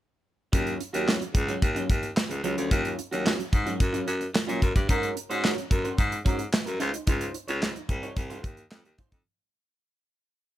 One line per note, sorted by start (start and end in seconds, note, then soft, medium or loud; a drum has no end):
0.52 0.73 D#2 medium
0.52 0.78 F#3 medium
0.52 0.78 C#4 medium
0.52 0.79 F4 medium
0.52 kick loud
0.52 closed hi-hat medium
0.67 closed hi-hat soft
0.80 muted clean electric guitar stroke soft
0.80 closed hi-hat medium
0.93 1.14 D#2 medium
0.93 1.06 F#3 medium
0.93 1.06 C#4 medium
0.93 1.05 F#4 medium
0.93 closed hi-hat medium
1.07 1.22 F#3 medium
1.07 1.21 C#4 medium
1.07 1.20 F4 medium
1.07 snare medium
1.07 clap medium
1.21 muted clean electric guitar stroke medium
1.21 closed hi-hat soft
1.35 1.55 C#2 medium
1.35 muted clean electric guitar stroke soft
1.35 kick loud
1.35 closed hi-hat medium
1.48 1.61 F#3 medium
1.48 1.61 C#4 medium
1.48 1.60 F#4 medium
1.48 closed hi-hat soft
1.62 1.82 D#2 medium
1.62 kick loud
1.62 closed hi-hat medium
1.75 1.88 F#3 medium
1.75 1.89 C#4 medium
1.75 1.89 F4 medium
1.75 closed hi-hat soft
1.89 2.10 D#2 medium
1.89 muted clean electric guitar stroke soft
1.89 kick medium
1.89 closed hi-hat medium
2.03 muted clean electric guitar stroke soft
2.03 closed hi-hat soft
2.16 muted clean electric guitar stroke soft
2.16 snare loud
2.16 clap medium
2.30 2.40 C#2 medium
2.30 muted clean electric guitar stroke soft
2.30 closed hi-hat soft
2.43 2.54 C#2 medium
2.43 2.58 F#3 medium
2.43 2.57 C#4 medium
2.43 2.56 F4 medium
2.43 closed hi-hat medium
2.57 2.68 D2 medium
2.57 2.70 F#3 soft
2.57 2.70 C#4 medium
2.57 2.69 F4 medium
2.57 closed hi-hat medium
2.71 2.91 D#2 loud
2.71 2.96 F#3 medium
2.71 2.97 C#4 medium
2.71 2.97 F4 medium
2.71 kick loud
2.71 closed hi-hat medium
2.85 closed hi-hat soft
2.98 muted clean electric guitar stroke soft
2.98 closed hi-hat medium
3.11 3.32 D#2 medium
3.11 3.24 F#3 soft
3.11 3.24 C#4 medium
3.11 3.24 F#4 medium
3.11 closed hi-hat medium
3.25 3.40 F#3 medium
3.25 3.39 C#4 medium
3.25 3.38 F4 medium
3.25 snare medium
3.25 clap medium
3.39 muted clean electric guitar stroke soft
3.39 closed hi-hat soft
3.52 3.73 G#2 medium
3.52 muted clean electric guitar stroke soft
3.52 kick medium
3.52 closed hi-hat medium
3.66 3.78 F#3 medium
3.66 3.79 C#4 medium
3.66 3.78 F#4 medium
3.66 closed hi-hat soft
3.80 4.00 F#2 medium
3.80 muted clean electric guitar stroke soft
3.80 kick loud
3.80 closed hi-hat medium
3.93 4.06 F#3 medium
3.93 4.06 C#4 medium
3.93 4.07 F4 medium
3.93 closed hi-hat soft
4.07 4.27 F#2 medium
4.07 muted clean electric guitar stroke soft
4.07 closed hi-hat medium
4.21 muted clean electric guitar stroke soft
4.21 closed hi-hat soft
4.34 muted clean electric guitar stroke soft
4.34 snare loud
4.34 clap medium
4.47 4.58 A#2 medium
4.47 4.60 F#3 medium
4.47 4.61 C#4 medium
4.47 4.61 F4 medium
4.47 closed hi-hat soft
4.61 4.72 F#2 medium
4.61 muted clean electric guitar stroke soft
4.61 kick medium
4.61 closed hi-hat medium
4.75 4.86 G2 medium
4.75 muted clean electric guitar stroke soft
4.75 kick medium
4.75 closed hi-hat medium
4.88 5.09 G#2 loud
4.88 5.14 C#4 medium
4.88 5.14 F#4 medium
4.88 5.15 A#4 medium
4.88 kick loud
4.88 closed hi-hat medium
5.03 closed hi-hat soft
5.16 muted clean electric guitar stroke soft
5.16 closed hi-hat medium
5.30 5.50 G#2 medium
5.30 5.42 C#4 soft
5.30 5.42 F#4 medium
5.30 5.42 C5 medium
5.30 closed hi-hat medium
5.43 5.59 C#4 medium
5.43 5.57 F#4 medium
5.43 5.56 A#4 loud
5.43 snare medium
5.43 clap medium
5.57 muted clean electric guitar stroke soft
5.57 closed hi-hat soft
5.70 5.91 F#2 medium
5.70 muted clean electric guitar stroke soft
5.70 kick medium
5.70 closed hi-hat medium
5.84 5.97 C#4 soft
5.84 5.97 F#4 medium
5.84 5.96 C5 medium
5.84 closed hi-hat soft
5.98 6.19 G#2 loud
5.98 muted clean electric guitar stroke soft
5.98 kick loud
5.98 closed hi-hat medium
6.12 muted clean electric guitar stroke soft
6.12 closed hi-hat soft
6.25 6.46 G#2 medium
6.25 6.41 C#4 medium
6.25 6.39 F#4 medium
6.25 6.38 A#4 medium
6.25 kick medium
6.25 closed hi-hat medium
6.39 muted clean electric guitar stroke soft
6.39 closed hi-hat soft
6.52 muted clean electric guitar stroke soft
6.52 snare loud
6.52 clap medium
6.66 6.77 F#2 medium
6.66 muted clean electric guitar stroke soft
6.66 closed hi-hat soft
6.80 6.90 C#2 medium
6.80 6.95 D#4 medium
6.80 6.93 F4 medium
6.80 6.92 C5 medium
6.80 closed hi-hat medium
6.93 muted clean electric guitar stroke soft
6.93 closed hi-hat medium
7.07 7.28 C#2 medium
7.07 7.32 D#4 medium
7.07 7.33 F4 medium
7.07 7.33 C5 medium
7.07 kick medium
7.07 closed hi-hat medium
7.21 closed hi-hat medium
7.34 muted clean electric guitar stroke soft
7.34 closed hi-hat medium
7.48 7.69 C#2 medium
7.48 7.60 D#4 soft
7.48 7.61 F4 soft
7.48 7.60 C#5 medium
7.48 closed hi-hat medium
7.62 7.77 D#4 medium
7.62 7.75 F4 medium
7.62 7.74 C5 medium
7.62 snare medium
7.62 clap medium
7.75 muted clean electric guitar stroke soft
7.75 closed hi-hat soft
7.89 8.09 C2 medium
7.89 muted clean electric guitar stroke soft
7.89 kick medium
7.89 closed hi-hat medium
8.03 8.15 D#4 soft
8.03 8.15 F4 medium
8.03 8.15 C#5 medium
8.03 closed hi-hat soft
8.16 8.46 C2 medium
8.16 muted clean electric guitar stroke soft
8.16 kick loud
8.16 closed hi-hat medium
8.30 8.43 D#4 medium
8.30 8.43 F4 medium
8.30 8.44 C5 medium
8.30 closed hi-hat soft
8.44 8.64 D#2 medium
8.44 muted clean electric guitar stroke soft
8.44 kick medium
8.44 closed hi-hat medium
8.57 muted clean electric guitar stroke soft
8.57 closed hi-hat soft
8.71 8.81 F2 medium
8.71 muted clean electric guitar stroke soft
8.71 snare loud
8.71 clap medium
8.85 8.95 D#2 medium
8.85 muted clean electric guitar stroke soft
8.85 closed hi-hat soft
8.98 9.14 D#4 medium
8.98 9.12 F4 medium
8.98 9.11 C5 medium
8.98 kick medium
8.98 closed hi-hat medium
9.12 9.22 F2 medium
9.12 muted clean electric guitar stroke soft
9.12 kick medium
9.12 closed hi-hat medium